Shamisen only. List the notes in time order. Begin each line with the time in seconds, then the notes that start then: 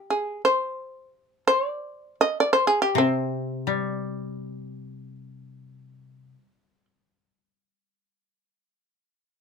0.10 G#4
0.45 C5
1.48 C5
1.68 D5
2.21 D#5
2.40 D5
2.53 C5
2.67 G#4
2.82 G4
2.98 C4